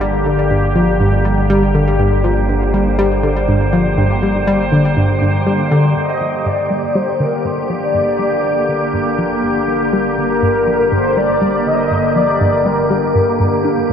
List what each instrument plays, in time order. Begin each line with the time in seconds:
Already playing: analog synth bass G1, ambient pad D3 A#3 G4, synth texture G4 D5
0.01 synth arpeggio sound G3
0.26 synth arpeggio sound D3
0.51 synth arpeggio sound G2
0.76 synth arpeggio sound F3
1.00 synth arpeggio sound G2
1.25 synth arpeggio sound G3
1.50 synth arpeggio sound G3
1.75 synth arpeggio sound D3
1.99 synth arpeggio sound G2, ambient pad C5
2.24 synth arpeggio sound F3
2.49 synth arpeggio sound G2
2.74 synth arpeggio sound G3
2.99 synth arpeggio sound G3
3.23 synth arpeggio sound D3
3.48 synth arpeggio sound G2
3.73 synth arpeggio sound F3
3.98 synth arpeggio sound G2
4.22 synth arpeggio sound G3
4.47 synth arpeggio sound G3
4.72 synth arpeggio sound D3
4.97 synth arpeggio sound G2
5.22 synth arpeggio sound G2
5.47 synth arpeggio sound G3
5.71 synth arpeggio sound D3
5.96 analog synth bass G1, synth arpeggio sound G2, ambient pad D3 A#3 G4, synth texture A#3 D6, soft synth lead D#5
6.21 synth arpeggio sound F3
6.46 synth arpeggio sound G2, soft synth lead D5
6.70 synth arpeggio sound G3
6.95 synth arpeggio sound G3, soft synth lead C5
7.20 synth arpeggio sound D3, soft synth lead A#4
7.45 synth arpeggio sound G2, soft synth lead C5
7.70 synth arpeggio sound F3, soft synth lead D5
7.94 synth arpeggio sound G2
8.19 synth arpeggio sound G3
8.44 synth arpeggio sound G3
8.69 synth arpeggio sound D3
8.94 synth arpeggio sound G2
9.18 synth arpeggio sound F3
9.43 synth arpeggio sound G2
9.68 synth arpeggio sound G3
9.93 synth arpeggio sound G3
10.18 synth arpeggio sound D3, soft synth lead A#4
10.42 synth arpeggio sound G2
10.67 synth arpeggio sound F3
10.92 synth arpeggio sound G2, soft synth lead C5
11.17 synth arpeggio sound G3, soft synth lead D5
11.42 synth arpeggio sound G3
11.66 synth arpeggio sound D3, soft synth lead D#5
11.91 synth arpeggio sound G2
12.16 synth arpeggio sound F3, soft synth lead D5
12.41 synth arpeggio sound G2
12.66 synth arpeggio sound G3, soft synth lead A#4
12.90 synth arpeggio sound G3
13.15 synth arpeggio sound G2
13.40 synth arpeggio sound G2
13.65 synth arpeggio sound D4
13.90 synth arpeggio sound G2, ambient pad A#4, soft synth lead D5